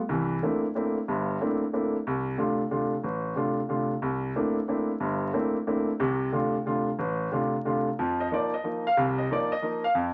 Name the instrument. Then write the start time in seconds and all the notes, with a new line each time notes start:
grand piano
0.09 C2 E3
0.42 A3 A#3 C4 D4 E4
0.75 A3 A#3 C4 D4 E4
1.08 G1 G2
1.41 A3 A#3 C4 D4 E4
1.73 A3 A#3 C4 D4 E4
2.07 C2
2.38 C3 A3 D4 F4
2.71 C3 A3 D4 F4
3.04 A1
3.36 C3 A3 D4 F4
3.69 C3 A3 D4 F4
4.02 C2
4.36 A3 A#3 C4 D4 E4
4.68 A3 A#3 C4 D4 E4
5.00 G1 G2
5.33 A3 A#3 C4 D4 E4
5.67 A3 A#3 C4 D4 E4
6.00 C2 C3
6.32 C3 A3 D4 F4
6.66 C3 A3 D4 F4
6.99 A1
7.32 C3 A3 D4 F4
7.65 C3 A3 D4 F4
7.99 F2 F3
8.20 D#5
8.31 F3 A#3 D#4 D5
8.54 D#5
8.64 F3 A#3 D#4
8.87 F5
8.97 C2 C3
9.18 D#5
9.30 F3 A#3 D#4 D5
9.52 D#5
9.62 F3 A#3 D#4
9.84 F5
9.95 F2